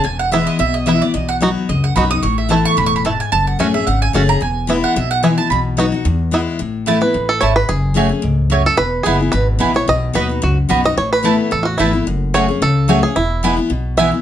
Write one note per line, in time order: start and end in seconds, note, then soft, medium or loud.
0.04 0.46 E1 medium
0.04 0.57 E2 medium
0.04 0.19 G#5 medium
0.19 0.32 F#5 loud
0.32 0.58 E3 loud
0.32 0.58 G#3 loud
0.32 0.59 B3 loud
0.32 0.40 B3 medium
0.32 0.59 E4 loud
0.32 0.36 E4 medium
0.32 0.47 E5 medium
0.47 0.59 D#5 loud
0.59 1.00 B1 medium
0.59 1.12 B2 loud
0.59 0.74 E5 loud
0.74 0.86 D#5 loud
0.86 1.01 E3 medium
0.86 1.01 G#3 medium
0.86 1.02 B3 medium
0.86 0.94 B3 medium
0.86 1.01 E4 loud
0.86 0.90 E4 medium
0.86 1.01 E5 loud
1.02 1.15 B3 soft
1.02 1.14 E4 medium
1.02 1.14 D5 loud
1.14 1.55 B1 medium
1.14 1.66 B2 medium
1.14 1.29 D#5 medium
1.29 1.36 F#5 loud
1.41 1.67 F#3 medium
1.41 1.68 B3 loud
1.41 1.49 B3 medium
1.41 1.68 D#4 medium
1.41 1.49 D#4 medium
1.41 1.68 F#4 loud
1.41 1.49 F#4 medium
1.69 1.92 C#2 medium
1.69 2.21 F#2 loud
1.69 1.83 D#5 medium
1.84 1.95 F#5 medium
1.96 2.19 B1 medium
1.96 2.10 F#3 loud
1.96 2.03 B3 medium
1.96 2.11 B3 medium
1.96 2.11 D#4 loud
1.96 2.03 D#4 medium
1.96 2.03 F#4 medium
1.96 2.09 F#4 loud
1.96 2.10 B5 loud
2.11 2.24 D#4 medium
2.11 2.23 F#4 medium
2.11 2.22 D#6 loud
2.23 2.64 A1 medium
2.23 2.75 A2 loud
2.23 2.37 C#6 loud
2.38 2.50 E5 medium
2.49 2.76 E3 loud
2.49 2.76 A3 medium
2.49 2.58 A3 medium
2.49 2.76 B3 loud
2.49 2.77 E4 loud
2.49 2.54 E4 medium
2.49 2.65 A5 medium
2.65 2.77 C#6 loud
2.77 3.18 E1 medium
2.77 3.04 A2 medium
2.77 2.86 B5 loud
2.86 2.95 C#6 loud
2.96 3.05 B5 loud
3.05 3.31 G#2 medium
3.05 3.12 A3 medium
3.05 3.08 E4 medium
3.05 3.20 A5 medium
3.20 3.32 G#5 loud
3.32 3.53 F#1 medium
3.32 3.85 F#2 loud
3.32 3.47 A5 loud
3.47 3.59 F#5 medium
3.59 3.83 A1 medium
3.59 3.74 F#3 medium
3.59 3.74 A3 loud
3.59 3.66 A3 medium
3.59 3.74 C#4 loud
3.59 3.67 C#4 medium
3.59 3.67 F#4 medium
3.59 3.73 G#4 loud
3.59 3.74 G#5 loud
3.74 3.88 C#4 soft
3.74 3.86 G#4 medium
3.74 3.86 E5 loud
3.87 4.10 G#1 medium
3.87 4.39 C#3 loud
3.87 4.01 F#5 medium
4.02 4.14 G#5 loud
4.13 4.38 F#1 loud
4.13 4.28 F#3 medium
4.13 4.29 A3 medium
4.13 4.21 A3 medium
4.13 4.29 C#4 loud
4.13 4.22 C#4 medium
4.13 4.22 F#4 medium
4.13 4.27 G#4 loud
4.13 4.29 A5 loud
4.28 4.42 C#4 soft
4.28 4.41 G#4 medium
4.28 4.41 A#5 loud
4.41 4.82 E1 medium
4.41 4.93 E2 loud
4.41 4.81 G#5 medium
4.67 4.94 E3 loud
4.67 4.95 G#3 loud
4.67 4.95 B3 loud
4.67 4.76 B3 medium
4.67 4.95 E4 loud
4.67 4.72 E4 medium
4.84 4.96 F#5 loud
4.96 5.37 B1 medium
4.96 5.49 B2 loud
4.96 5.10 E5 medium
5.11 5.23 F#5 loud
5.23 5.37 E3 loud
5.23 5.38 G#3 loud
5.23 5.30 B3 medium
5.23 5.38 B3 medium
5.23 5.26 E4 medium
5.23 5.36 E4 medium
5.23 5.37 G#5 medium
5.37 5.51 B3 soft
5.37 5.50 E4 medium
5.37 5.50 A5 loud
5.50 5.91 B1 medium
5.50 6.03 B2 medium
5.50 5.59 B5 loud
5.77 5.92 F#3 loud
5.77 5.92 B3 loud
5.77 5.85 B3 medium
5.77 5.93 D#4 loud
5.77 5.85 D#4 medium
5.77 5.85 F#4 medium
5.77 5.91 F#4 loud
5.92 6.06 D#4 medium
5.92 6.05 F#4 medium
6.05 6.46 E2 loud
6.05 6.57 E2 loud
6.31 6.58 E3 medium
6.31 6.58 G#3 loud
6.31 6.59 B3 medium
6.31 6.40 B3 medium
6.31 6.59 E4 loud
6.31 6.36 E4 medium
6.59 7.01 A1 medium
6.59 7.12 A2 medium
6.86 7.01 E3 medium
6.86 6.97 A3 medium
6.86 7.02 A3 medium
6.86 7.02 B3 loud
6.86 6.97 E4 medium
6.86 7.00 E4 loud
6.86 6.97 B4 loud
6.86 6.98 A5 loud
7.01 7.15 B3 medium
7.01 7.14 E4 medium
7.01 7.30 B4 loud
7.14 7.38 A1 loud
7.14 7.41 A2 medium
7.29 7.42 A4 loud
7.41 7.65 G#1 medium
7.41 7.68 G#2 loud
7.41 7.52 A3 medium
7.41 7.52 E4 loud
7.41 7.52 B4 medium
7.41 7.55 C#5 medium
7.41 7.52 A5 loud
7.56 7.69 B4 loud
7.69 8.10 F#1 medium
7.69 8.21 F#2 loud
7.69 8.35 G#4 medium
7.94 8.10 F#3 loud
7.94 8.10 A3 loud
7.94 8.06 A3 medium
7.94 8.11 C#4 loud
7.94 8.07 F#4 loud
7.94 8.08 G#4 loud
7.94 8.07 C#5 loud
7.94 8.07 G#5 loud
8.09 8.24 C#4 soft
8.09 8.22 G#4 medium
8.22 8.65 C#2 medium
8.22 8.49 G#2 medium
8.50 8.77 F#2 medium
8.50 8.61 A3 medium
8.50 8.61 F#4 medium
8.50 8.62 C#5 loud
8.50 8.62 G#5 loud
8.66 8.78 A4 loud
8.77 8.99 E1 medium
8.77 9.30 E2 medium
8.77 9.04 B4 loud
9.03 9.30 F#1 medium
9.03 9.20 E3 medium
9.03 9.20 G#3 medium
9.03 9.16 B3 loud
9.03 9.20 B3 loud
9.03 9.16 E4 medium
9.03 9.19 E4 medium
9.03 9.33 G#4 medium
9.03 9.16 B4 medium
9.03 9.16 G#5 loud
9.20 9.34 B3 medium
9.20 9.33 E4 medium
9.32 9.57 G#1 loud
9.32 9.85 B2 loud
9.32 9.46 B4 loud
9.59 9.85 A1 medium
9.59 9.74 E3 loud
9.59 9.74 G#3 medium
9.59 9.70 B3 medium
9.59 9.75 B3 medium
9.59 9.70 E4 medium
9.59 9.73 E4 loud
9.59 9.71 B4 loud
9.59 9.71 G#5 loud
9.74 9.88 B3 soft
9.74 9.87 E4 medium
9.74 9.87 C#5 loud
9.88 10.08 B1 medium
9.88 10.40 B2 loud
9.88 10.14 D#5 loud
10.13 10.39 D#2 medium
10.13 10.29 F#3 loud
10.13 10.29 B3 loud
10.13 10.25 B3 medium
10.13 10.30 D#4 loud
10.13 10.25 F#4 medium
10.13 10.28 F#4 loud
10.13 10.41 B4 medium
10.13 10.25 D#5 medium
10.13 10.25 B5 loud
10.29 10.43 D#4 soft
10.29 10.42 F#4 medium
10.42 10.66 C#2 medium
10.42 10.95 F#2 loud
10.42 10.57 F#4 medium
10.69 10.93 B1 medium
10.69 10.84 F#3 loud
10.69 10.84 B3 medium
10.69 10.80 B3 medium
10.69 10.84 D#4 loud
10.69 10.80 F#4 loud
10.69 10.83 F#4 medium
10.69 10.80 D#5 loud
10.69 10.80 B5 medium
10.84 10.97 D#4 soft
10.84 10.97 F#4 medium
10.84 10.97 D#5 loud
10.97 11.38 A1 medium
10.97 11.50 A2 medium
10.97 11.12 C#5 loud
11.13 11.54 B4 loud
11.23 11.50 E3 medium
11.23 11.50 A3 loud
11.23 11.35 A3 medium
11.23 11.51 B3 loud
11.23 11.35 E4 medium
11.23 11.51 E4 loud
11.23 11.35 B4 medium
11.23 11.35 A5 loud
11.51 11.76 A1 medium
11.51 12.04 E2 medium
11.51 11.64 A4 loud
11.63 11.67 F4 medium
11.63 11.78 F#4 medium
11.78 12.03 G#1 medium
11.78 11.93 E3 medium
11.78 11.93 A3 medium
11.78 11.89 A3 medium
11.78 11.94 B3 loud
11.78 12.04 E4 medium
11.78 11.90 E4 medium
11.78 11.92 E4 loud
11.78 11.90 B4 medium
11.78 11.90 A5 medium
11.93 12.07 B3 soft
11.93 12.06 E4 medium
12.07 12.48 F#1 medium
12.07 12.59 F#2 loud
12.34 12.48 F#3 loud
12.34 12.44 A3 medium
12.34 12.49 A3 loud
12.34 12.49 C#4 loud
12.34 12.44 F#4 loud
12.34 12.47 G#4 loud
12.34 12.60 C#5 loud
12.34 12.44 C#5 loud
12.34 12.45 G#5 loud
12.48 12.62 C#4 medium
12.48 12.61 G#4 medium
12.62 13.02 C#2 medium
12.62 13.14 C#3 loud
12.62 13.05 A4 loud
12.88 13.03 F#3 medium
12.88 13.03 A3 loud
12.88 12.99 A3 loud
12.88 13.03 C#4 loud
12.88 12.99 F#4 loud
12.88 13.01 G#4 loud
12.88 12.99 C#5 loud
12.88 12.99 G#5 loud
13.02 13.16 C#4 soft
13.02 13.15 G#4 medium
13.02 13.16 G#4 loud
13.16 13.57 E1 medium
13.16 13.68 E2 loud
13.16 13.55 E4 medium
13.43 13.58 E3 medium
13.43 13.58 G#3 loud
13.43 13.54 B3 loud
13.43 13.58 B3 medium
13.43 13.54 E4 medium
13.43 13.56 E4 loud
13.43 13.54 B4 loud
13.43 13.54 G#5 loud
13.57 13.71 B3 medium
13.57 13.70 E4 medium
13.70 14.11 B1 medium
13.70 14.22 B2 medium
13.97 14.12 E3 loud
13.97 14.12 G#3 medium
13.97 14.08 B3 loud
13.97 14.13 B3 loud
13.97 14.08 E4 medium
13.97 14.11 E4 loud
13.97 14.09 B4 loud
13.97 14.22 E5 loud
13.97 14.09 G#5 loud
14.12 14.22 B3 medium
14.12 14.22 E4 medium